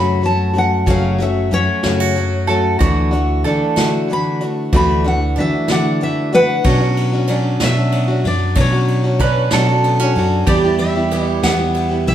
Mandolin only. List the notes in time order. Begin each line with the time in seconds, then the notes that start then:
Already playing: B4
2.47 A4
2.79 F#4
3.44 A4
6.65 F#4
9.21 B4
9.53 A4
10.47 G4